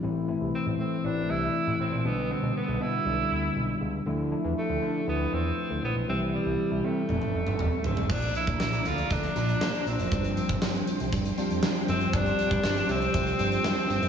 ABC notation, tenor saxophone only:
X:1
M:4/4
L:1/8
Q:1/4=119
K:Gmix
V:1 name="Tenor saxophone"
z2 C C D E2 C | B, C B, E4 z | z2 A,2 B, C2 B, | C G,2 A,4 C |
D E2 F D3 C- | C3 z4 C | D3 C4- C |]